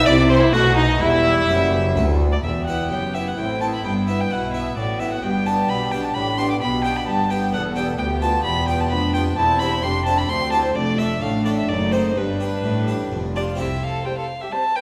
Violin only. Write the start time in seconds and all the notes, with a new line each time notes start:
0.06 D5
0.30 C5
0.41 E4
0.53 F#4
0.77 D#4
1.00 E4
2.32 D5
2.44 E5
2.66 F#5
2.91 G5
3.14 E5
3.28 F#5
3.38 G5
3.61 A5
3.74 B5
3.85 G5
4.09 E5
4.21 G5
4.32 F#5
4.54 E5
4.77 D5
4.99 E5
5.12 F#5
5.23 G5
5.46 A5
5.69 B5
5.91 G5
6.04 A5
6.14 B5
6.38 C6
6.50 D6
6.61 B5
6.84 G5
6.96 B5
7.07 A5
7.30 G5
7.53 F#5
7.76 G5
7.99 G5
8.22 A5
8.44 B5
8.68 G5
8.81 A5
8.91 B5
9.14 G5
9.37 A5
9.60 B5
9.82 C6
10.06 A5
10.18 B5
10.29 C6
10.52 A5
10.65 C5
10.75 D5
10.99 E5
11.21 F5
11.45 D5
11.57 E5
11.69 D5
11.92 C5
12.17 B4
13.36 D5
13.59 E5
13.84 F5
14.05 G5
14.18 F5
14.41 E5
14.52 A5
14.76 G5